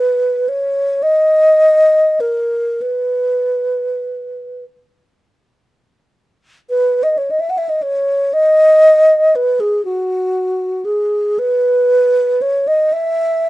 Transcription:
0, 0, Header, 1, 2, 480
1, 0, Start_track
1, 0, Key_signature, 5, "major"
1, 0, Tempo, 1102941
1, 697, Tempo, 1202405
1, 1177, Tempo, 1234568
1, 1178, Time_signature, 6, 3, 24, 8
1, 2137, Tempo, 1408451
1, 2617, Tempo, 1100917
1, 3097, Tempo, 1043478
1, 3577, Tempo, 1015228
1, 5785, End_track
2, 0, Start_track
2, 0, Title_t, "Alto flute"
2, 0, Program_c, 0, 73
2, 0, Note_on_c, 0, 71, 84
2, 212, Note_on_c, 0, 73, 83
2, 218, Note_off_c, 0, 71, 0
2, 447, Note_on_c, 0, 75, 95
2, 453, Note_off_c, 0, 73, 0
2, 937, Note_on_c, 0, 70, 73
2, 943, Note_off_c, 0, 75, 0
2, 1181, Note_on_c, 0, 71, 79
2, 1187, Note_off_c, 0, 70, 0
2, 1892, Note_off_c, 0, 71, 0
2, 2624, Note_on_c, 0, 71, 92
2, 2770, Note_on_c, 0, 75, 88
2, 2777, Note_off_c, 0, 71, 0
2, 2833, Note_on_c, 0, 73, 74
2, 2840, Note_off_c, 0, 75, 0
2, 2889, Note_on_c, 0, 75, 74
2, 2896, Note_off_c, 0, 73, 0
2, 2930, Note_on_c, 0, 76, 77
2, 2937, Note_off_c, 0, 75, 0
2, 2973, Note_on_c, 0, 78, 76
2, 2980, Note_off_c, 0, 76, 0
2, 3009, Note_on_c, 0, 76, 73
2, 3015, Note_off_c, 0, 78, 0
2, 3057, Note_on_c, 0, 75, 75
2, 3064, Note_off_c, 0, 76, 0
2, 3115, Note_on_c, 0, 73, 94
2, 3122, Note_off_c, 0, 75, 0
2, 3351, Note_on_c, 0, 75, 107
2, 3357, Note_off_c, 0, 73, 0
2, 3827, Note_on_c, 0, 71, 86
2, 3834, Note_off_c, 0, 75, 0
2, 3944, Note_on_c, 0, 68, 85
2, 3951, Note_off_c, 0, 71, 0
2, 4058, Note_off_c, 0, 68, 0
2, 4061, Note_on_c, 0, 66, 92
2, 4533, Note_on_c, 0, 68, 83
2, 4540, Note_off_c, 0, 66, 0
2, 4788, Note_on_c, 0, 71, 105
2, 4796, Note_off_c, 0, 68, 0
2, 5275, Note_on_c, 0, 73, 87
2, 5282, Note_off_c, 0, 71, 0
2, 5397, Note_on_c, 0, 75, 88
2, 5404, Note_off_c, 0, 73, 0
2, 5516, Note_on_c, 0, 76, 104
2, 5523, Note_off_c, 0, 75, 0
2, 5785, Note_off_c, 0, 76, 0
2, 5785, End_track
0, 0, End_of_file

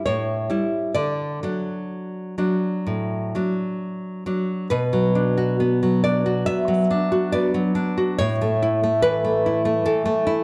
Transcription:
0, 0, Header, 1, 2, 480
1, 0, Start_track
1, 0, Key_signature, 2, "major"
1, 0, Tempo, 896861
1, 509, Time_signature, 4, 2, 24, 8
1, 509, Tempo, 952381
1, 1949, Tempo, 895522
1, 2433, Key_signature, 2, "minor"
1, 2909, Tempo, 863309
1, 4349, Tempo, 826446
1, 5655, End_track
2, 0, Start_track
2, 0, Title_t, "Nylon-string guitar"
2, 0, Program_c, 0, 24
2, 30, Note_on_c, 0, 73, 54
2, 38, Note_on_c, 0, 45, 46
2, 261, Note_off_c, 0, 45, 0
2, 266, Note_on_c, 0, 55, 35
2, 270, Note_on_c, 0, 64, 36
2, 490, Note_off_c, 0, 55, 0
2, 491, Note_off_c, 0, 73, 0
2, 492, Note_off_c, 0, 64, 0
2, 506, Note_on_c, 0, 74, 48
2, 510, Note_on_c, 0, 50, 41
2, 740, Note_off_c, 0, 50, 0
2, 750, Note_on_c, 0, 54, 31
2, 755, Note_on_c, 0, 62, 34
2, 1223, Note_off_c, 0, 54, 0
2, 1225, Note_off_c, 0, 62, 0
2, 1229, Note_on_c, 0, 54, 30
2, 1231, Note_on_c, 0, 62, 33
2, 1474, Note_on_c, 0, 45, 34
2, 1708, Note_off_c, 0, 45, 0
2, 1712, Note_off_c, 0, 54, 0
2, 1716, Note_off_c, 0, 62, 0
2, 1718, Note_on_c, 0, 54, 29
2, 1722, Note_on_c, 0, 62, 33
2, 2171, Note_off_c, 0, 74, 0
2, 2186, Note_off_c, 0, 54, 0
2, 2188, Note_off_c, 0, 62, 0
2, 2192, Note_on_c, 0, 54, 29
2, 2194, Note_on_c, 0, 62, 31
2, 2411, Note_off_c, 0, 54, 0
2, 2412, Note_off_c, 0, 62, 0
2, 2428, Note_on_c, 0, 71, 58
2, 2433, Note_on_c, 0, 47, 47
2, 2550, Note_on_c, 0, 54, 36
2, 2670, Note_on_c, 0, 62, 39
2, 2789, Note_on_c, 0, 66, 40
2, 2907, Note_off_c, 0, 66, 0
2, 2910, Note_on_c, 0, 59, 37
2, 3029, Note_off_c, 0, 54, 0
2, 3036, Note_on_c, 0, 54, 34
2, 3130, Note_off_c, 0, 71, 0
2, 3150, Note_off_c, 0, 62, 0
2, 3152, Note_on_c, 0, 74, 55
2, 3156, Note_on_c, 0, 62, 36
2, 3273, Note_off_c, 0, 59, 0
2, 3275, Note_on_c, 0, 66, 41
2, 3376, Note_off_c, 0, 47, 0
2, 3386, Note_off_c, 0, 74, 0
2, 3388, Note_on_c, 0, 76, 64
2, 3392, Note_off_c, 0, 66, 0
2, 3394, Note_on_c, 0, 59, 39
2, 3503, Note_off_c, 0, 54, 0
2, 3510, Note_on_c, 0, 54, 37
2, 3629, Note_off_c, 0, 62, 0
2, 3635, Note_on_c, 0, 62, 41
2, 3753, Note_on_c, 0, 66, 42
2, 3849, Note_off_c, 0, 76, 0
2, 3867, Note_off_c, 0, 59, 0
2, 3868, Note_on_c, 0, 74, 62
2, 3874, Note_on_c, 0, 59, 36
2, 3983, Note_off_c, 0, 54, 0
2, 3990, Note_on_c, 0, 54, 38
2, 4098, Note_off_c, 0, 62, 0
2, 4105, Note_on_c, 0, 62, 39
2, 4224, Note_off_c, 0, 66, 0
2, 4230, Note_on_c, 0, 66, 38
2, 4327, Note_off_c, 0, 74, 0
2, 4346, Note_off_c, 0, 62, 0
2, 4347, Note_off_c, 0, 54, 0
2, 4347, Note_on_c, 0, 73, 64
2, 4349, Note_off_c, 0, 59, 0
2, 4349, Note_off_c, 0, 66, 0
2, 4353, Note_on_c, 0, 45, 51
2, 4480, Note_on_c, 0, 57, 39
2, 4602, Note_on_c, 0, 64, 41
2, 4717, Note_off_c, 0, 57, 0
2, 4724, Note_on_c, 0, 57, 39
2, 4817, Note_off_c, 0, 73, 0
2, 4834, Note_on_c, 0, 71, 70
2, 4843, Note_on_c, 0, 52, 44
2, 4955, Note_off_c, 0, 57, 0
2, 4962, Note_on_c, 0, 57, 41
2, 5080, Note_off_c, 0, 64, 0
2, 5087, Note_on_c, 0, 64, 43
2, 5192, Note_off_c, 0, 57, 0
2, 5199, Note_on_c, 0, 57, 43
2, 5294, Note_off_c, 0, 45, 0
2, 5294, Note_off_c, 0, 71, 0
2, 5312, Note_off_c, 0, 52, 0
2, 5317, Note_on_c, 0, 69, 60
2, 5318, Note_on_c, 0, 52, 43
2, 5426, Note_off_c, 0, 57, 0
2, 5433, Note_on_c, 0, 57, 45
2, 5549, Note_off_c, 0, 64, 0
2, 5556, Note_on_c, 0, 64, 48
2, 5655, Note_off_c, 0, 52, 0
2, 5655, Note_off_c, 0, 57, 0
2, 5655, Note_off_c, 0, 64, 0
2, 5655, Note_off_c, 0, 69, 0
2, 5655, End_track
0, 0, End_of_file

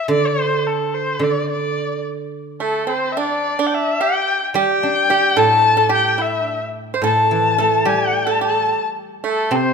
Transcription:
0, 0, Header, 1, 4, 480
1, 0, Start_track
1, 0, Tempo, 553506
1, 93, Time_signature, 2, 2, 24, 8
1, 8441, End_track
2, 0, Start_track
2, 0, Title_t, "Erhu"
2, 0, Program_c, 0, 110
2, 0, Note_on_c, 0, 76, 78
2, 92, Note_off_c, 0, 76, 0
2, 101, Note_on_c, 0, 74, 81
2, 231, Note_on_c, 0, 72, 79
2, 244, Note_off_c, 0, 74, 0
2, 577, Note_on_c, 0, 69, 69
2, 590, Note_off_c, 0, 72, 0
2, 814, Note_on_c, 0, 72, 74
2, 827, Note_off_c, 0, 69, 0
2, 1071, Note_on_c, 0, 74, 70
2, 1084, Note_off_c, 0, 72, 0
2, 1293, Note_off_c, 0, 74, 0
2, 1298, Note_on_c, 0, 74, 71
2, 1748, Note_off_c, 0, 74, 0
2, 2268, Note_on_c, 0, 69, 66
2, 2511, Note_on_c, 0, 72, 70
2, 2524, Note_off_c, 0, 69, 0
2, 2705, Note_on_c, 0, 76, 59
2, 2718, Note_off_c, 0, 72, 0
2, 2757, Note_on_c, 0, 74, 78
2, 2770, Note_off_c, 0, 76, 0
2, 3178, Note_on_c, 0, 79, 59
2, 3191, Note_off_c, 0, 74, 0
2, 3242, Note_on_c, 0, 76, 84
2, 3255, Note_off_c, 0, 79, 0
2, 3475, Note_on_c, 0, 79, 91
2, 3488, Note_off_c, 0, 76, 0
2, 3835, Note_off_c, 0, 79, 0
2, 3948, Note_on_c, 0, 79, 95
2, 4667, Note_on_c, 0, 81, 105
2, 4680, Note_off_c, 0, 79, 0
2, 5141, Note_off_c, 0, 81, 0
2, 5158, Note_on_c, 0, 79, 83
2, 5387, Note_on_c, 0, 76, 77
2, 5400, Note_off_c, 0, 79, 0
2, 5748, Note_off_c, 0, 76, 0
2, 6130, Note_on_c, 0, 81, 92
2, 6837, Note_on_c, 0, 79, 83
2, 6850, Note_off_c, 0, 81, 0
2, 7193, Note_on_c, 0, 81, 75
2, 7206, Note_off_c, 0, 79, 0
2, 7309, Note_off_c, 0, 81, 0
2, 7321, Note_on_c, 0, 81, 83
2, 7646, Note_off_c, 0, 81, 0
2, 8060, Note_on_c, 0, 69, 72
2, 8285, Note_on_c, 0, 72, 86
2, 8298, Note_off_c, 0, 69, 0
2, 8441, Note_off_c, 0, 72, 0
2, 8441, End_track
3, 0, Start_track
3, 0, Title_t, "Pipa"
3, 0, Program_c, 1, 105
3, 2257, Note_on_c, 1, 57, 57
3, 2485, Note_off_c, 1, 57, 0
3, 2489, Note_on_c, 1, 60, 58
3, 2724, Note_off_c, 1, 60, 0
3, 2748, Note_on_c, 1, 62, 65
3, 3085, Note_off_c, 1, 62, 0
3, 3114, Note_on_c, 1, 62, 68
3, 3449, Note_off_c, 1, 62, 0
3, 3474, Note_on_c, 1, 67, 69
3, 3810, Note_off_c, 1, 67, 0
3, 3949, Note_on_c, 1, 67, 85
3, 4392, Note_off_c, 1, 67, 0
3, 4422, Note_on_c, 1, 67, 77
3, 4644, Note_off_c, 1, 67, 0
3, 4654, Note_on_c, 1, 69, 79
3, 4990, Note_off_c, 1, 69, 0
3, 5003, Note_on_c, 1, 69, 69
3, 5108, Note_off_c, 1, 69, 0
3, 5112, Note_on_c, 1, 67, 69
3, 5348, Note_off_c, 1, 67, 0
3, 5358, Note_on_c, 1, 64, 53
3, 5584, Note_off_c, 1, 64, 0
3, 5584, Note_on_c, 1, 62, 53
3, 5707, Note_off_c, 1, 62, 0
3, 6017, Note_on_c, 1, 72, 58
3, 6094, Note_off_c, 1, 72, 0
3, 6102, Note_on_c, 1, 69, 79
3, 6553, Note_off_c, 1, 69, 0
3, 6577, Note_on_c, 1, 69, 69
3, 6805, Note_off_c, 1, 69, 0
3, 6812, Note_on_c, 1, 67, 65
3, 7153, Note_off_c, 1, 67, 0
3, 7168, Note_on_c, 1, 69, 70
3, 7285, Note_off_c, 1, 69, 0
3, 7295, Note_on_c, 1, 69, 56
3, 7632, Note_off_c, 1, 69, 0
3, 8011, Note_on_c, 1, 57, 64
3, 8237, Note_off_c, 1, 57, 0
3, 8251, Note_on_c, 1, 60, 68
3, 8441, Note_off_c, 1, 60, 0
3, 8441, End_track
4, 0, Start_track
4, 0, Title_t, "Guzheng"
4, 0, Program_c, 2, 107
4, 71, Note_on_c, 2, 50, 55
4, 1025, Note_off_c, 2, 50, 0
4, 1036, Note_on_c, 2, 50, 50
4, 2505, Note_off_c, 2, 50, 0
4, 3939, Note_on_c, 2, 55, 59
4, 4190, Note_on_c, 2, 62, 45
4, 4425, Note_on_c, 2, 67, 41
4, 4652, Note_on_c, 2, 45, 56
4, 5139, Note_off_c, 2, 62, 0
4, 5373, Note_off_c, 2, 55, 0
4, 5379, Note_off_c, 2, 67, 0
4, 6074, Note_off_c, 2, 45, 0
4, 6084, Note_on_c, 2, 45, 50
4, 6339, Note_on_c, 2, 52, 42
4, 6591, Note_on_c, 2, 57, 41
4, 6810, Note_on_c, 2, 55, 53
4, 7301, Note_off_c, 2, 52, 0
4, 7532, Note_off_c, 2, 45, 0
4, 7545, Note_off_c, 2, 57, 0
4, 8245, Note_on_c, 2, 48, 50
4, 8248, Note_off_c, 2, 55, 0
4, 8441, Note_off_c, 2, 48, 0
4, 8441, End_track
0, 0, End_of_file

